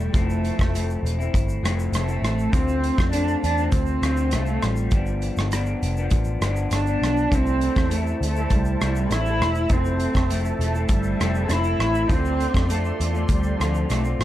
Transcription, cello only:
Already playing: G3
0.14 A3
1.95 A3
2.51 C4
3.12 D4
3.43 D4
3.73 C4
4.34 A3
4.65 G3
6.72 D4
7.34 C4
7.92 A3
8.24 A3
8.54 G3
9.12 E4
9.72 C4
10.31 A3
10.61 A3
10.91 G3
11.50 E4
12.09 C4
12.70 A3
13.31 G3
13.60 F3
13.89 A3
14.19 G3

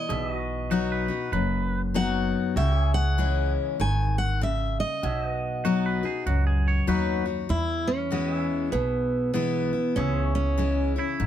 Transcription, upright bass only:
0.09 B1
1.32 F#1
2.56 C#2
3.80 G#1
5.03 B1
6.26 C#2
6.88 D#2
7.49 E2
8.73 B1
9.96 C#2
11.20 G#1

